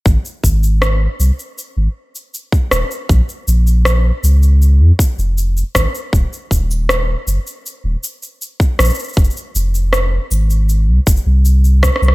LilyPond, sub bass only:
\new Staff \with { instrumentName = "Sub bass" } { \clef bass \time 4/4 \key bes \minor \tempo 4 = 79 aes,,16 r16 aes,,8. r16 c,16 r8 aes,,16 r4 ees,,16 r16 | bes,,16 r16 bes,,8. r16 des,8. f,16 r16 f,,8 r16 aes,,16 r16 | ees,,16 r16 ees,,8. r16 ges,,16 r8 ees,,16 r4 bes,,16 r16 | f,,16 r16 f,,8. r16 aes,,8. c,16 f,,16 c,8. r16 c,16 | }